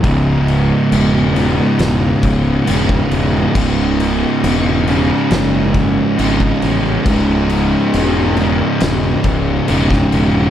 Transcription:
<<
  \new Staff \with { instrumentName = "Distorted electric guitar" } { \clef bass \time 4/4 \key cis \minor \tempo 4 = 68 <cis, gis, cis>4. <cis, gis, cis>4. <cis, gis, cis>4 | <cis, gis, cis>4. <cis, gis, cis>4. <cis, gis, cis>4 | <cis, gis, cis>4. <cis, gis, cis>4. <cis, gis, cis>4 | }
  \new Staff \with { instrumentName = "Fingered electric bass" } { \clef bass \time 4/4 \key cis \minor cis,,4 e,,4 e,,8 cis,,8 e,,8 e,,8 | cis,,4 e,,4 fis,,4 gis,,8 a,,8 | cis,,4 e,,4 e,,8 cis,,8 e,,8 e,,8 | }
  \new DrumStaff \with { instrumentName = "Drums" } \drummode { \time 4/4 <cymc bd>8 cymc8 cymc8 cymc8 <cymc sn>8 <cymc bd>8 cymc16 bd16 cymc8 | <cymc bd>8 cymc8 cymc8 cymc8 <cymc sn>8 <cymc bd>8 cymc16 bd16 cymc8 | <cymc bd>8 cymc8 cymc8 cymc8 <cymc sn>8 <cymc bd>8 cymc16 <bd sn>16 cymc8 | }
>>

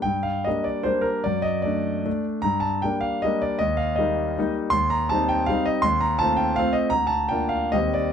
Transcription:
<<
  \new Staff \with { instrumentName = "Grand piano" } { \time 3/4 \key g \minor \tempo 4 = 155 g''8 f''8 ees''8 d''8 c''8 bes'8 | d''8 ees''8 d''4. r8 | bes''8 a''8 g''8 f''8 ees''8 d''8 | ees''8 f''8 ees''4. r8 |
\key bes \major c'''8 bes''8 a''8 g''8 f''8 ees''8 | c'''8 bes''8 a''8 g''8 f''8 ees''8 | bes''8 a''8 g''8 f''8 ees''8 d''8 | }
  \new Staff \with { instrumentName = "Grand piano" } { \time 3/4 \key g \minor g,4 <g bes d'>4 <g bes d'>4 | fis,4 <a d'>4 <a d'>4 | g,4 <g bes d'>4 <g bes d'>4 | ees,4 <g bes ees'>4 <g bes ees'>4 |
\key bes \major ees,4 <g c' ees'>4 <g c' ees'>4 | ees,4 <a c' f'>4 <a c' f'>4 | d,4 <bes d' f'>4 <ees, g c' g'>4 | }
>>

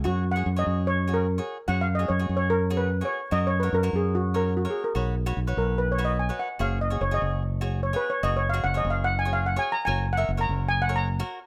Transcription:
<<
  \new Staff \with { instrumentName = "Steel pan" } { \time 4/4 \key fis \major \tempo 4 = 147 \tuplet 3/2 { fis'4 fis''8~ fis''8 dis''4 cis''4 ais'8 } r4 | \tuplet 3/2 { fis''8 eis''8 dis''8 cis''4 cis''8 ais'4 b'8~ b'8 cis''4 } | \tuplet 3/2 { dis''8 cis''8 b'8 } ais'8 gis'8 fis'8 ais'8 \tuplet 3/2 { fis'8 gis'8 ais'8 } | r4. ais'8 \tuplet 3/2 { b'8 cis''8 dis''8 } gis''8 fis''8 |
eis''8 dis''8 \tuplet 3/2 { cis''8 dis''4~ } dis''8 r8 \tuplet 3/2 { cis''8 b'8 cis''8 } | \tuplet 3/2 { dis''8 cis''8 eis''8 fis''8 dis''8 eis''8 fis''8 gis''8 eis''8 fis''8 gis''8 ais''8 } | \tuplet 3/2 { gis''4 fis''8~ fis''8 ais''4 gis''8 fis''8 ais''8~ } ais''4 | }
  \new Staff \with { instrumentName = "Cavaquinho" } { \time 4/4 \key fis \major <fis' gis' cis''>8 r16 <fis' gis' cis''>16 r16 <fis' gis' cis''>8. r8 <fis' gis' cis''>8 r16 <fis' gis' cis''>8 r16 | <fis' gis' cis''>8 r16 <fis' gis' cis''>16 r16 <fis' gis' cis''>8. r8 <fis' gis' cis''>8 r16 <fis' gis' cis''>8 r16 | <fis' ais' cis''>8 r16 <fis' ais' cis''>16 r16 <fis' ais' cis''>8. r8 <fis' ais' cis''>8 r16 <fis' ais' cis''>8 r16 | <fis' b' cis''>8 r16 <fis' b' cis''>16 r16 <fis' b' cis''>8. r8 <fis' b' cis''>8 r16 <fis' b' cis''>8 r16 |
<fis' gis' cis''>8 r16 <fis' gis' cis''>16 r16 <fis' gis' cis''>8. r8 <fis' gis' cis''>8 r16 <fis' gis' cis''>8 r16 | <fis' gis' cis''>8 r16 <fis' gis' cis''>16 r16 <fis' gis' cis''>8. r8 <fis' gis' cis''>8 r16 <fis' gis' cis''>8 r16 | <fis' ais' cis''>8 r16 <fis' ais' e''>16 r16 <fis' ais' cis''>8. r8 <fis' ais' cis''>8 r16 <fis' ais' cis''>8 r16 | }
  \new Staff \with { instrumentName = "Fingered electric bass" } { \clef bass \time 4/4 \key fis \major fis,4 fis,8 fis,2 r8 | fis,4 fis,8 fis,2 r8 | fis,4 fis,8 fis,2 r8 | b,,4 b,,8 b,,2 r8 |
fis,,4 fis,,8 fis,,2 r8 | fis,,4 fis,,8 fis,,2 r8 | fis,,4 fis,,8 fis,,2 r8 | }
>>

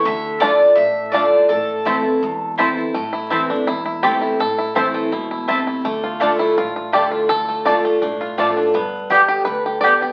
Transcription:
<<
  \new Staff \with { instrumentName = "Mandolin" } { \time 4/4 \key a \minor \tempo 4 = 166 e''4 d''4 e''4 d''4 | a'2. r4 | r1 | r1 |
r1 | r1 | r1 | }
  \new Staff \with { instrumentName = "Mandolin" } { \time 4/4 \key a \minor r4 <a f' d'' a''>16 r4. r16 <a f' d'' a''>16 r8. | r4 <c' e' c'' a''>16 r4. r16 <c' e' c'' a''>16 r8. | r4 <c' e' c'' a''>16 r4. r16 <c' e' c'' a''>16 r8. | r4 <c' e' c'' a''>16 r4. r16 <c' e' c'' a''>16 r8. |
r4 <a f' d'' a''>16 r4. r16 <a f' d'' a''>16 r8. | r4 <a f' d'' a''>16 r4. r16 <a f' d'' a''>16 r8. | r4 <b g' d'' g''>16 r4. r16 <b g' d'' g''>16 r8. | }
  \new Staff \with { instrumentName = "Five-string banjo" } { \time 4/4 \key a \minor << { r4 <a d' f'>8 r4. <a d' f'>8 r8 | r4 <a e'>8 r4. <a e'>8 r8 | r4. d'8 e'4 g'4 | a'4 c''2~ c''8 r8 |
r4. e'8 f'4 g'4 | a'4 d''2~ d''8 r8 | r4. g'8 b'4 d''4 | } \\ { r1 | r1 | a8 e'8 e'4. e'4 e'8~ | e'8 e'4 a8 e'8 e'8 a8 e'8 |
a8 f'8 d'4. f'4 f'8~ | f'8 a4 a8 d'8 f'8 f8 d'8 | b4 g'4. g'4 g'8 | } >> }
  \new Staff \with { instrumentName = "Steel-string acoustic guitar" } { \time 4/4 \key a \minor << { r4 <d a d' f'>8 <d' f'>8 r4 <d a d' f'>4 | r4 <e a c' e'>8 <c' e'>8 r4 <e a c' e'>8 <c' e'>8 | r4 <e a c' e'>8 <c' e'>8 r4 <e a c' e'>4 | r4 <e a c' e'>4 r2 |
r4 <d a d' f'>4 r4 <d a d' f'>4 | r4 <d a d' f'>4 r4 <d a d' f'>4 | r4 <d g b g'>4 r4 <d g b g'>8 <b g'>8 | } \\ { d2 a,2 | a,2 e,2 | a,2 e,2 | a,2 b,4 c4 |
d2 a,2 | d2 a,2 | g,2 d2 | } >> }
  \new Staff \with { instrumentName = "Upright bass" } { \clef bass \time 4/4 \key a \minor d,2 a,,2 | a,,2 e,,2 | a,,2 e,,2 | a,,2 e,,2 |
d,2 a,,2 | d,2 b,,4 a,,4 | g,,2 d,2 | }
>>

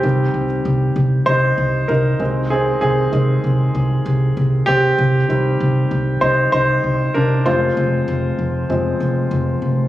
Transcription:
<<
  \new Staff \with { instrumentName = "Upright piano" } { \time 4/4 \key c \minor \tempo 4 = 97 g'2 <ees' c''>4 <ees' bes'>4 | <c' aes'>8 <c' aes'>4. r4. <c' g'>8~ | <c' g'>4. r8 <ees' c''>8 <ees' c''>4 <d' bes'>8 | <f' c''>2. r4 | }
  \new Staff \with { instrumentName = "Upright piano" } { \clef bass \time 4/4 \key c \minor <ees g c'>8 r2. <ees aes c'>8~ | <ees aes c'>4 <ees aes c'>8 r2 r8 | r8 <ees g c'>4. r2 | <f aes c'>2 <f aes c'>8 r4. | }
  \new Staff \with { instrumentName = "Upright bass" } { \clef bass \time 4/4 \key c \minor c,8 c,8 c,8 c,8 c,8 c,8 c,8 c,8~ | c,8 c,8 c,8 c,8 c,8 c,8 c,8 c,8 | c,8 c,8 c,8 c,8 c,8 c,8 c,8 c,8 | f,,8 f,,8 f,,8 f,,8 f,,8 f,,8 f,,8 f,,8 | }
>>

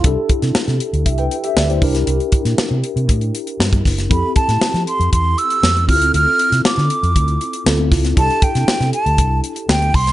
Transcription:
<<
  \new Staff \with { instrumentName = "Flute" } { \time 4/4 \key c \major \tempo 4 = 118 r1 | r1 | b''8 a''4 c'''8 c'''8 e'''4 f'''8 | f'''4 d'''2 r4 |
a''8 g''4 a''4 r8 g''8 c'''8 | }
  \new Staff \with { instrumentName = "Tine electric piano" } { \time 4/4 \key c \major << { r2 <g' e''>16 <b' g''>8 <g' e''>16 d''16 <e' c''>8 r16 | r1 | r1 | r1 |
r1 | } \\ { <d' e' g' a'>2.~ <d' e' g' a'>8 <d' e' g' bes'>8~ | <d' e' g' bes'>2.~ <d' e' g' bes'>8 r8 | <c' e' g' a'>2.~ <c' e' g' a'>8 <c' e' f' g' a'>8~ | <c' e' f' g' a'>2. <c' e' f' a'>4 |
<d' e' g' a'>2.~ <d' e' g' a'>8 r8 | } >> }
  \new Staff \with { instrumentName = "Fingered electric bass" } { \clef bass \time 4/4 \key c \major c,16 r8 c16 r16 c16 r16 d,16 c,8 r8 d,8 c,8 | c,16 r8 bes,16 r16 c16 r16 c16 a,8 r8 g,8 fis,,8 | f,16 r8 a,16 r16 f16 r16 f,16 e,8 r8 f,8 d,8 | d,16 r8 c16 r16 d16 r16 f,16 d,8 r8 d,8 des,8 |
c,16 r8 c16 r16 c16 r16 d,16 c,8 r8 d,8 c,8 | }
  \new DrumStaff \with { instrumentName = "Drums" } \drummode { \time 4/4 <hh bd>8 <hh bd>16 <hh sn>16 sn16 <hh sn>16 hh16 hh16 <hh bd>16 hh16 hh16 hh16 sn16 hh16 <hho bd>16 <hh sn>16 | hh16 hh16 <hh bd>16 <hh sn>16 sn8 hh16 hh16 <hh bd>16 hh16 hh16 hh16 sn16 <hh bd>16 <hho bd sn>16 <hh sn>16 | <hh bd>8 <hh bd>16 <hh sn>16 sn16 <hh sn>16 hh16 hh16 <hh bd>8 hh16 hh16 sn16 hh16 <hho bd>16 hh16 | hh8 hh16 <hh sn>16 sn16 sn16 hh16 hh16 <hh bd>16 hh16 hh16 hh16 sn8 <hho bd sn>16 <hh sn>16 |
<hh bd>16 hh16 <hh bd>16 <hh sn>16 sn16 <hh sn>16 hh16 hh16 <hh bd>8 hh16 hh16 sn16 hh16 <hho bd>16 <hh sn>16 | }
>>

